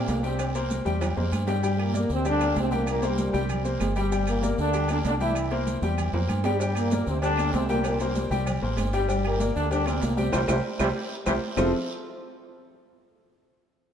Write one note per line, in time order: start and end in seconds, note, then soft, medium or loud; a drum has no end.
0.00 0.18 A#3 medium
0.00 0.18 A#4 medium
0.00 0.18 D5 medium
0.08 0.80 C2 medium
0.08 0.24 A#2 medium
0.08 0.24 A#3 loud
0.08 cowbell medium
0.08 high conga medium
0.08 low timbale medium
0.08 low agogo medium
0.08 short guiro medium
0.08 maracas medium
0.23 0.53 C3 medium
0.23 0.49 G3 medium
0.23 0.53 C4 medium
0.23 0.49 G4 medium
0.23 0.49 G5 medium
0.23 cowbell medium
0.23 short guiro medium
0.23 maracas soft
0.39 cowbell loud
0.39 high conga soft
0.39 low agogo loud
0.39 long guiro medium
0.39 claves medium
0.39 maracas medium
0.55 0.80 A#3 medium
0.55 0.80 A#4 medium
0.55 0.81 C5 medium
0.55 high conga soft
0.55 low agogo medium
0.55 maracas medium
0.70 cowbell medium
0.70 high conga medium
0.70 low timbale medium
0.70 short guiro medium
0.70 maracas medium
0.85 1.15 E2 medium
0.85 1.11 G3 loud
0.85 1.11 G4 medium
0.85 1.11 G5 medium
0.85 high conga loud
0.85 short guiro medium
0.85 maracas soft
1.01 cowbell loud
1.01 high conga soft
1.01 low conga medium
1.01 high timbale loud
1.01 low agogo loud
1.01 long guiro medium
1.01 claves medium
1.01 maracas medium
1.16 1.31 F2 medium
1.16 1.42 A#3 medium
1.16 1.42 A#4 medium
1.16 1.42 C5 medium
1.16 high conga soft
1.16 low conga medium
1.16 low timbale medium
1.32 2.04 G2 medium
1.32 cowbell medium
1.32 high conga medium
1.32 low agogo loud
1.32 short guiro medium
1.32 claves medium
1.32 maracas medium
1.47 1.77 G2 medium
1.47 1.60 G3 medium
1.47 1.77 G3 medium
1.47 1.60 G4 medium
1.47 1.60 G5 medium
1.47 cowbell medium
1.47 high conga soft
1.47 low timbale medium
1.47 low agogo medium
1.47 short guiro medium
1.47 maracas soft
1.63 1.89 G3 medium
1.63 1.89 G4 medium
1.63 1.89 G5 medium
1.63 high conga soft
1.63 low agogo medium
1.63 long guiro medium
1.63 maracas medium
1.79 2.10 A#2 medium
1.79 2.10 A#3 loud
1.79 high conga soft
1.79 low agogo loud
1.79 claves medium
1.94 2.19 A#3 medium
1.94 2.20 A#4 medium
1.94 2.20 D5 medium
1.94 high conga medium
1.94 low timbale medium
1.94 short guiro medium
1.94 maracas medium
2.09 2.53 D2 medium
2.09 2.25 C3 medium
2.09 2.25 C4 loud
2.09 short guiro medium
2.09 maracas soft
2.25 2.55 D3 medium
2.25 2.38 G3 medium
2.25 2.55 D4 loud
2.25 2.38 G4 medium
2.25 2.39 G5 medium
2.25 high conga soft
2.25 low agogo medium
2.25 long guiro medium
2.25 maracas medium
2.40 2.66 A#3 medium
2.40 2.66 A#4 medium
2.40 2.66 D5 medium
2.40 high conga soft
2.40 low agogo loud
2.40 claves medium
2.40 maracas medium
2.56 3.28 C2 medium
2.56 2.72 C3 medium
2.56 2.72 C4 loud
2.56 high conga medium
2.56 low timbale medium
2.56 low agogo medium
2.56 short guiro medium
2.56 maracas medium
2.71 2.88 A#2 medium
2.71 2.97 G3 medium
2.71 2.88 A#3 loud
2.71 2.97 G4 medium
2.71 2.97 G5 medium
2.71 high conga medium
2.71 short guiro medium
2.71 maracas soft
2.87 3.02 A#2 medium
2.87 3.03 A#3 loud
2.87 high conga soft
2.87 low agogo loud
2.87 long guiro medium
2.87 claves medium
2.87 maracas medium
3.02 3.50 G2 medium
3.02 3.50 G3 medium
3.02 3.28 A#3 medium
3.02 3.28 A#4 medium
3.02 3.28 C5 medium
3.02 high conga soft
3.02 low agogo medium
3.02 maracas medium
3.18 high conga loud
3.18 low timbale medium
3.18 short guiro medium
3.18 maracas medium
3.33 3.77 C2 loud
3.33 3.59 G3 loud
3.33 3.59 G4 medium
3.33 3.59 G5 medium
3.33 high conga loud
3.33 short guiro medium
3.33 maracas soft
3.49 high conga soft
3.49 low conga loud
3.49 low agogo loud
3.49 long guiro medium
3.49 claves medium
3.49 maracas medium
3.64 3.90 A#3 medium
3.64 3.90 A#4 medium
3.64 3.90 C5 medium
3.64 high conga soft
3.64 maracas medium
3.80 4.52 G1 loud
3.80 high conga medium
3.80 low timbale medium
3.80 low agogo loud
3.80 short guiro medium
3.80 claves medium
3.80 maracas medium
3.96 4.25 G2 medium
3.96 4.09 G3 medium
3.96 4.25 G3 loud
3.96 4.09 G4 medium
3.96 4.09 G5 medium
3.96 high conga soft
3.96 low agogo medium
3.96 short guiro medium
3.96 maracas soft
4.12 4.37 G3 medium
4.12 4.37 G4 medium
4.12 4.37 G5 medium
4.12 low agogo loud
4.12 long guiro medium
4.12 maracas medium
4.27 4.56 A#2 medium
4.27 4.57 A#3 loud
4.27 high conga soft
4.27 low agogo loud
4.27 claves medium
4.27 maracas medium
4.43 4.68 A#3 medium
4.43 4.68 A#4 medium
4.43 4.69 D5 medium
4.43 high conga loud
4.43 low timbale medium
4.43 short guiro medium
4.43 maracas medium
4.58 5.01 D2 loud
4.58 4.87 D3 medium
4.58 4.87 D4 loud
4.58 short guiro medium
4.58 maracas soft
4.73 4.86 G3 medium
4.73 4.86 G4 medium
4.73 4.87 G5 medium
4.73 high conga soft
4.73 low agogo medium
4.73 long guiro medium
4.73 maracas medium
4.88 4.96 D3 medium
4.88 5.15 A#3 medium
4.88 4.97 D4 loud
4.88 5.15 A#4 medium
4.88 5.16 D5 medium
4.88 high conga soft
4.88 low agogo loud
4.88 claves medium
4.88 maracas medium
5.04 5.77 C2 medium
5.04 5.13 D3 medium
5.04 5.13 D4 loud
5.04 high conga medium
5.04 low timbale medium
5.04 low agogo medium
5.04 short guiro medium
5.04 maracas medium
5.20 5.50 E3 medium
5.20 5.46 G3 medium
5.20 5.50 E4 loud
5.20 5.46 G4 medium
5.20 5.46 G5 medium
5.20 high conga medium
5.20 short guiro medium
5.20 maracas soft
5.35 low agogo loud
5.35 long guiro medium
5.35 claves medium
5.35 maracas medium
5.51 5.77 A#3 medium
5.51 5.77 A#4 medium
5.51 5.77 C5 medium
5.51 high conga soft
5.51 low agogo medium
5.67 high conga medium
5.67 low timbale medium
5.67 short guiro medium
5.67 maracas medium
5.82 6.11 E2 medium
5.82 6.08 G3 medium
5.82 6.08 G4 medium
5.82 6.08 G5 medium
5.82 high conga loud
5.82 short guiro medium
5.82 maracas soft
5.98 high conga soft
5.98 low conga medium
5.98 low agogo loud
5.98 long guiro medium
5.98 claves medium
5.98 maracas medium
6.13 6.28 F2 medium
6.13 6.39 A#3 medium
6.13 6.39 A#4 medium
6.13 6.39 C5 medium
6.13 high conga soft
6.13 low conga medium
6.13 high timbale medium
6.29 7.01 G2 medium
6.29 high conga medium
6.29 low agogo loud
6.29 short guiro medium
6.29 claves medium
6.29 maracas medium
6.44 6.74 G2 medium
6.44 6.73 G3 medium
6.44 6.57 G3 medium
6.44 6.58 G4 medium
6.44 6.58 G5 medium
6.44 high conga soft
6.44 low timbale loud
6.44 low agogo medium
6.44 short guiro medium
6.44 maracas soft
6.59 6.86 G3 medium
6.59 6.86 G4 medium
6.59 6.87 G5 medium
6.59 cowbell loud
6.59 high conga soft
6.59 low agogo medium
6.59 long guiro medium
6.59 maracas medium
6.75 7.06 A#2 medium
6.75 7.05 A#3 loud
6.75 low agogo loud
6.75 claves medium
6.75 maracas medium
6.91 7.17 A#3 medium
6.91 7.17 A#4 medium
6.91 7.18 D5 medium
6.91 cowbell medium
6.91 high conga medium
6.91 low timbale medium
6.91 short guiro medium
6.91 maracas medium
7.06 7.50 D2 loud
7.06 7.22 C3 medium
7.06 7.21 C4 loud
7.06 short guiro medium
7.06 maracas soft
7.22 7.52 D3 medium
7.22 7.35 G3 medium
7.22 7.51 D4 loud
7.22 7.36 G4 medium
7.22 7.36 G5 medium
7.22 cowbell loud
7.22 high conga soft
7.22 low agogo medium
7.22 long guiro medium
7.22 maracas medium
7.38 7.63 A#3 medium
7.38 7.64 A#4 medium
7.38 7.64 D5 medium
7.38 low agogo loud
7.38 claves medium
7.38 maracas medium
7.53 8.25 C2 medium
7.53 7.69 C3 medium
7.53 7.68 C4 loud
7.53 cowbell medium
7.53 high conga medium
7.53 low timbale medium
7.53 low agogo medium
7.53 short guiro medium
7.53 maracas medium
7.68 7.84 A#2 medium
7.68 7.95 G3 loud
7.68 7.83 A#3 loud
7.68 7.95 G4 medium
7.68 7.95 G5 loud
7.68 cowbell medium
7.68 high conga medium
7.68 short guiro medium
7.68 maracas soft
7.84 8.00 A#2 medium
7.84 7.99 A#3 loud
7.84 cowbell loud
7.84 high conga soft
7.84 low agogo loud
7.84 long guiro medium
7.84 claves medium
7.84 maracas medium
7.99 8.44 G2 medium
7.99 8.43 G3 medium
7.99 8.26 A#3 medium
7.99 8.26 A#4 medium
7.99 8.26 C5 medium
7.99 high conga soft
7.99 low agogo medium
7.99 maracas medium
8.15 cowbell medium
8.15 high conga loud
8.15 low timbale medium
8.15 short guiro medium
8.15 maracas medium
8.31 8.60 C2 medium
8.31 8.56 G3 loud
8.31 8.57 G4 loud
8.31 8.57 G5 loud
8.31 high conga loud
8.31 short guiro medium
8.31 maracas soft
8.46 cowbell loud
8.46 high conga soft
8.46 low conga medium
8.46 low agogo loud
8.46 long guiro medium
8.46 claves medium
8.46 maracas medium
8.62 8.77 A1 medium
8.62 8.88 A#3 medium
8.62 8.88 A#4 medium
8.62 8.88 C5 medium
8.62 high conga soft
8.62 low conga medium
8.77 9.50 G1 medium
8.77 cowbell medium
8.77 high conga medium
8.77 low timbale medium
8.77 low agogo loud
8.77 short guiro medium
8.77 claves medium
8.77 maracas medium
8.93 9.23 G2 medium
8.93 9.06 G3 medium
8.93 9.23 G3 loud
8.93 9.06 G4 loud
8.93 9.06 G5 medium
8.93 cowbell medium
8.93 high conga soft
8.93 low agogo medium
8.93 short guiro medium
8.93 maracas soft
9.09 9.34 G3 medium
9.09 9.35 G4 medium
9.09 9.35 G5 medium
9.09 cowbell loud
9.09 high conga soft
9.09 low agogo medium
9.09 long guiro medium
9.09 maracas medium
9.25 9.54 A#2 medium
9.25 9.54 A#3 medium
9.25 high conga soft
9.25 low agogo loud
9.25 claves medium
9.40 9.66 A#3 medium
9.40 9.66 A#4 medium
9.40 9.66 D5 medium
9.40 cowbell medium
9.40 high conga medium
9.40 low timbale medium
9.40 short guiro medium
9.40 maracas medium
9.56 9.99 D2 loud
9.56 9.70 D3 medium
9.56 9.70 D4 loud
9.56 short guiro medium
9.56 maracas soft
9.71 9.86 D3 medium
9.71 9.84 G3 medium
9.71 9.86 D4 loud
9.71 9.84 G4 medium
9.71 9.84 G5 medium
9.71 cowbell loud
9.71 high conga soft
9.71 low agogo medium
9.71 long guiro medium
9.71 maracas medium
9.86 10.03 C3 medium
9.86 10.12 A#3 medium
9.86 10.02 C4 loud
9.86 10.12 A#4 medium
9.86 10.12 D5 medium
9.86 high conga soft
9.86 low agogo loud
9.86 claves medium
9.86 maracas medium
10.01 10.31 C2 medium
10.01 10.18 A#2 medium
10.01 10.17 A#3 medium
10.01 cowbell medium
10.01 high conga medium
10.01 low timbale medium
10.01 low agogo medium
10.01 short guiro medium
10.01 maracas medium
10.17 10.32 C3 medium
10.17 10.30 G3 medium
10.17 10.33 C4 medium
10.17 10.30 G4 loud
10.17 10.30 G5 medium
10.17 cowbell medium
10.17 high conga medium
10.17 short guiro medium
10.17 maracas soft
10.32 10.45 C2 loud
10.32 10.40 C3 loud
10.32 10.40 E3 loud
10.32 10.41 G3 loud
10.32 10.43 G4 loud
10.32 10.43 A#4 loud
10.32 10.43 C5 loud
10.32 cowbell loud
10.32 high conga loud
10.32 high timbale loud
10.32 long guiro loud
10.32 claves loud
10.32 maracas loud
10.48 10.60 C2 loud
10.48 10.56 C3 loud
10.48 10.56 E3 medium
10.48 10.56 G3 medium
10.48 10.58 G4 loud
10.48 10.58 A#4 loud
10.48 10.58 C5 loud
10.48 cowbell loud
10.48 high conga loud
10.48 high timbale loud
10.48 long guiro loud
10.48 claves loud
10.48 maracas loud
10.79 10.91 C2 loud
10.79 10.87 C3 loud
10.79 10.87 E3 loud
10.79 10.87 G3 loud
10.79 10.90 G4 medium
10.79 10.90 A#4 medium
10.79 10.90 C5 loud
10.79 cowbell loud
10.79 high conga loud
10.79 high timbale loud
10.79 long guiro loud
10.79 claves loud
10.79 maracas loud
11.26 11.38 C2 medium
11.26 11.34 C3 medium
11.26 11.34 E3 loud
11.26 11.34 G3 loud
11.26 11.36 G4 loud
11.26 11.36 A#4 loud
11.26 11.36 C5 loud
11.26 cowbell loud
11.26 high conga loud
11.26 high timbale loud
11.26 long guiro loud
11.26 claves loud
11.26 maracas medium
11.57 11.72 F1 loud
11.57 11.72 F3 loud
11.57 11.72 C4 medium
11.57 11.72 E4 medium
11.57 11.72 F4 medium
11.57 11.72 F4 loud
11.57 11.72 A4 medium
11.57 11.72 C5 loud
11.57 low bongo loud
11.57 low conga loud
11.57 low timbale loud
11.57 long guiro loud
11.57 claves loud
11.57 maracas loud